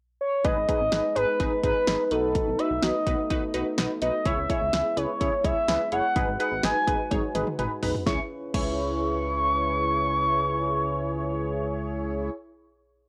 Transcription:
0.21 analog synth lead C#5
0.44 analog synth bass G#1, french horn section G#3 B3 D#4, analog polysynth D#4 G#4 B4, analog synth lead D#5, kick, closed hi-hat
0.56 analog synth bass G#1
0.68 analog polysynth D#4 G#4 B4, analog synth lead D#5, kick, closed hi-hat
0.80 analog synth bass G#1
0.92 analog synth bass G#1, analog polysynth D#4 G#4 B4, snare, closed hi-hat
1.15 analog synth bass G#1, analog polysynth D#4 G#4 B4, analog synth lead B4, closed hi-hat
1.40 analog synth bass G#1, analog polysynth D#4 G#4 B4, kick, closed hi-hat
1.63 analog synth bass G#1, analog polysynth D#4 G#4 B4, analog synth lead B4, kick, closed hi-hat
1.87 analog synth bass G#1, analog polysynth D#4 G#4 B4, snare, closed hi-hat
2.04 analog synth lead B4
2.11 analog synth bass B1, french horn section A3, analog polysynth D#4 F#4 B4, analog synth lead A4, closed hi-hat
2.35 kick, closed hi-hat
2.47 analog synth bass B1
2.58 analog polysynth D#4 F#4 B4, analog synth lead E5, closed hi-hat
2.71 analog synth bass B1
2.82 analog synth bass B1, analog polysynth D#4 F#4 B4, analog synth lead D#5, snare, closed hi-hat
3.07 analog synth bass B1, analog polysynth D#4 F#4 B4, kick, closed hi-hat
3.30 analog synth bass B1, analog polysynth D#4 F#4 B4, kick, closed hi-hat
3.54 analog synth bass B1, analog polysynth D#4 F#4 B4, closed hi-hat
3.78 analog synth bass B1, analog polysynth D#4 F#4 B4, snare, closed hi-hat
4.02 analog synth bass B1, analog polysynth D#4 F#4 B4, analog synth lead D#5, closed hi-hat
4.25 analog synth bass C#2, french horn section C#3 G#3 E4, analog polysynth E4 G#4 C#5, analog synth lead E5, kick, closed hi-hat
4.37 analog synth bass C#2
4.49 analog polysynth E4 G#4 C#5, analog synth lead E5, kick, closed hi-hat
4.61 analog synth bass C#2
4.73 analog synth bass C#2, analog polysynth E4 G#4 E5, snare, closed hi-hat
4.97 analog synth bass C#2, analog polysynth E4 G#4 B4, analog synth lead C#5, closed hi-hat
5.21 analog synth bass C#2, analog polysynth E4 G#4 C#5, kick, closed hi-hat
5.44 analog synth bass C#2, analog polysynth E4 G#4 C#5, analog synth lead E5, kick, closed hi-hat
5.68 analog synth bass C#2, analog polysynth E4 G#4 B4, snare, closed hi-hat
5.92 analog synth bass F#1, analog polysynth E4 G#4 C#5, analog synth lead F#5, closed hi-hat
6.16 analog synth bass G#1, french horn section D#4 F#4 B4, analog polysynth D#4 G#4 B4, kick, closed hi-hat
6.28 analog synth bass G#1
6.40 analog polysynth D#4 G#4 B4, analog synth lead F#5, closed hi-hat
6.52 analog synth bass G#1
6.63 analog synth bass G#1, analog polysynth D#4 G#4 B4, analog synth lead G#5, snare, closed hi-hat
6.87 analog synth bass G#1, analog polysynth D#4 G#4 B4, kick, closed hi-hat
7.11 analog synth bass G#1, analog polysynth D#4 G#4 C#5, kick, closed hi-hat, high tom
7.35 analog synth bass G#1, analog polysynth D#4 G#4 B4, closed hi-hat, mid tom
7.47 mid tom
7.59 analog synth bass G#1, analog polysynth D#4 G#4 B4, closed hi-hat, mid tom
7.83 analog synth bass B1, analog polysynth D#4 G#4 B4, floor tom, open hi-hat
7.95 floor tom
8.06 analog synth bass C#2, french horn section C#3 C#4 E4 B4, analog polysynth E4 G#4 C#5, analog synth lead C#6, kick, snare
8.54 analog synth bass C#2, analog polysynth E4 G#4 C#5, analog synth lead C#6, kick, crash

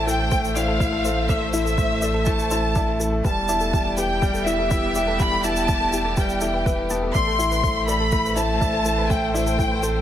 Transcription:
Already playing: sub bass A1, string section A2 A3 G4 C5, upright piano A3 E4
0.07 synth arpeggio sound E4, upright piano A4, violin section G5, shaker
0.19 synth arpeggio sound A4
0.31 upright piano A3, synth arpeggio sound C5, kick, shaker
0.45 shaker
0.56 upright piano E4, synth arpeggio sound D5, violin section F5, shaker
0.68 synth arpeggio sound A4
0.80 synth arpeggio sound E4, upright piano E4, kick, shaker
0.93 synth arpeggio sound A4
1.05 upright piano A4, synth arpeggio sound C5, shaker
1.29 upright piano A3, synth arpeggio sound D5, violin section E5, kick, shaker
1.41 synth arpeggio sound A4
1.53 upright piano E4, synth arpeggio sound E4, violin section E5, shaker
1.65 synth arpeggio sound A4, shaker
1.78 upright piano A3, synth arpeggio sound C5, kick, shaker
2.02 upright piano A4, synth arpeggio sound D5, shaker
2.14 synth arpeggio sound A4
2.26 upright piano A3, synth arpeggio sound E4, violin section A5, kick, shaker
2.39 synth arpeggio sound A4, shaker
2.51 upright piano E4, synth arpeggio sound C5, shaker
2.75 upright piano E4, synth arpeggio sound D5, kick, shaker
2.88 synth arpeggio sound A4
3.00 synth arpeggio sound E4, upright piano A4, shaker
3.12 synth arpeggio sound A4
3.24 sub bass E1, string section E3, upright piano G3, synth arpeggio sound B4, violin section A5, kick, shaker
3.40 string section B3
3.49 upright piano E4, synth arpeggio sound D5, shaker
3.60 synth arpeggio sound A4, shaker
3.73 upright piano G3, synth arpeggio sound E4, string section G4, kick, shaker
3.85 synth arpeggio sound A4
3.97 upright piano G4, synth arpeggio sound B4, violin section G5, shaker
4.22 upright piano G3, synth arpeggio sound D5, kick, shaker
4.34 synth arpeggio sound A4, shaker
4.46 upright piano E4, synth arpeggio sound E4, violin section E5, shaker
4.59 synth arpeggio sound A4
4.71 upright piano E4, synth arpeggio sound B4, kick, shaker
4.95 upright piano G4, synth arpeggio sound D5, shaker
5.07 synth arpeggio sound A4
5.19 upright piano G3, synth arpeggio sound E4, violin section B5, kick, shaker
5.32 synth arpeggio sound A4
5.44 upright piano E4, synth arpeggio sound B4, violin section A5, shaker
5.56 shaker
5.68 upright piano G3, synth arpeggio sound D5, kick, shaker
5.80 synth arpeggio sound A4
5.93 synth arpeggio sound E4, upright piano G4, shaker
6.05 synth arpeggio sound A4
6.17 upright piano G3, synth arpeggio sound B4, violin section G5, kick, shaker
6.29 shaker
6.41 upright piano E4, synth arpeggio sound A4, shaker
6.54 synth arpeggio sound B4
6.66 upright piano B4, synth arpeggio sound E5, kick, shaker
6.90 upright piano B3, synth arpeggio sound A5, shaker
7.03 synth arpeggio sound A4
7.14 sub bass A1, upright piano A3, synth arpeggio sound D5, violin section C6, kick, shaker
7.27 synth arpeggio sound A4
7.39 upright piano E4, synth arpeggio sound E4, shaker
7.46 string section A3
7.52 synth arpeggio sound B4, shaker
7.59 string section C5
7.64 upright piano A3, synth arpeggio sound C5, kick, shaker
7.88 upright piano A4, synth arpeggio sound D5, violin section B5, shaker
8.00 synth arpeggio sound A4
8.12 upright piano A3, synth arpeggio sound E4, kick, shaker
8.25 synth arpeggio sound B4, shaker
8.36 upright piano E4, synth arpeggio sound C5, violin section A5, shaker
8.60 upright piano E4, synth arpeggio sound D5, kick, shaker
8.73 synth arpeggio sound A4
8.85 synth arpeggio sound E4, upright piano A4, shaker
8.98 synth arpeggio sound B4
9.10 upright piano A3, synth arpeggio sound C5, violin section G5, kick, shaker
9.34 upright piano E4, synth arpeggio sound D5, violin section G5, shaker
9.47 synth arpeggio sound A4, shaker
9.58 upright piano A3, synth arpeggio sound E4, kick, shaker
9.71 synth arpeggio sound B4
9.83 upright piano A4, synth arpeggio sound C5, shaker

